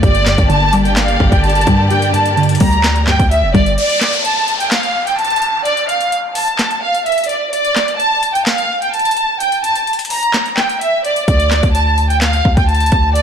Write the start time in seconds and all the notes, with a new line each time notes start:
0.03 G1 G2 D3 A#3 G4 D5, kick, closed hi-hat
0.15 closed hi-hat
0.26 G2, snare, clap, closed hi-hat
0.38 G1, kick, closed hi-hat
0.50 D3 A5, closed hi-hat
0.73 G3, closed hi-hat
0.85 G5, closed hi-hat
0.96 F5, snare, clap, closed hi-hat
1.08 closed hi-hat
1.20 G1 G2, kick
1.32 G1 G5, kick, closed hi-hat
1.44 A5, closed hi-hat
1.50 closed hi-hat
1.55 closed hi-hat
1.61 closed hi-hat
1.67 G2 G3, kick, closed hi-hat
1.90 G2 G5, closed hi-hat
2.02 closed hi-hat
2.13 G2 A5, closed hi-hat
2.26 closed hi-hat
2.37 D3, closed hi-hat
2.43 closed hi-hat
2.49 closed hi-hat
2.55 closed hi-hat
2.60 D2 G3 A#5, kick, open hi-hat
2.73 closed hi-hat
2.84 snare, clap, closed hi-hat
2.96 closed hi-hat
3.07 G2 G5, snare, clap
3.19 D2, kick, closed hi-hat
3.31 E5, closed hi-hat
3.43 F1
3.54 G1 G3 D5, kick, closed hi-hat
3.66 closed hi-hat
3.78 D5, closed hi-hat, downlifter
3.90 closed hi-hat
4.01 snare, clap, closed hi-hat
4.13 closed hi-hat
4.25 A5, closed hi-hat
4.48 closed hi-hat
4.60 G5, closed hi-hat
4.71 F5, snare, clap, closed hi-hat
4.83 closed hi-hat
5.07 G5, closed hi-hat
5.19 A5, closed hi-hat
5.25 closed hi-hat
5.30 closed hi-hat
5.36 closed hi-hat
5.42 closed hi-hat
5.65 D5, closed hi-hat
5.77 closed hi-hat
5.89 F5, closed hi-hat
6.01 closed hi-hat
6.12 closed hi-hat
6.35 A5, open hi-hat
6.48 closed hi-hat
6.59 snare, clap, closed hi-hat
6.71 closed hi-hat
6.83 F5
6.95 closed hi-hat
7.06 E5, closed hi-hat
7.12 closed hi-hat
7.18 closed hi-hat
7.24 closed hi-hat
7.29 D5, closed hi-hat
7.53 D5, closed hi-hat
7.65 closed hi-hat
7.76 snare, clap, closed hi-hat
7.88 closed hi-hat
8.00 A5, closed hi-hat
8.23 closed hi-hat
8.35 G5, closed hi-hat
8.46 F5, snare, clap, closed hi-hat
8.58 closed hi-hat
8.82 G5, closed hi-hat
8.94 A5, closed hi-hat
8.99 closed hi-hat
9.05 closed hi-hat
9.11 closed hi-hat
9.17 closed hi-hat
9.40 G5, closed hi-hat
9.52 closed hi-hat
9.64 A5, closed hi-hat
9.75 closed hi-hat
9.87 closed hi-hat
9.93 closed hi-hat
9.99 closed hi-hat
10.05 closed hi-hat
10.10 A#5, open hi-hat
10.23 closed hi-hat
10.34 snare, clap, closed hi-hat
10.46 closed hi-hat
10.57 G5, snare, clap
10.69 closed hi-hat
10.81 E5, closed hi-hat
11.05 D5, closed hi-hat
11.16 closed hi-hat
11.28 D2 D5, kick, closed hi-hat
11.40 closed hi-hat
11.51 snare, clap, closed hi-hat
11.63 D2, kick, closed hi-hat
11.75 A5, closed hi-hat
11.98 closed hi-hat
12.10 G5, closed hi-hat
12.21 F5, snare, clap, closed hi-hat
12.33 closed hi-hat
12.45 D2, kick
12.57 D2 G5, kick, closed hi-hat
12.68 A5, closed hi-hat
12.75 closed hi-hat
12.80 closed hi-hat
12.86 closed hi-hat
12.92 D2, kick, closed hi-hat
13.15 D5, closed hi-hat